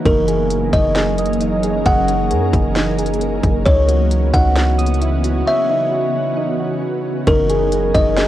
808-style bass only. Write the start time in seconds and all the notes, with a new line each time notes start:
0.06 F#1
0.73 F#1
1.86 F#1
2.31 F#2
2.53 F#1
3.43 F#1
3.66 C#2
4.34 C#2
7.27 F#1
7.95 F#1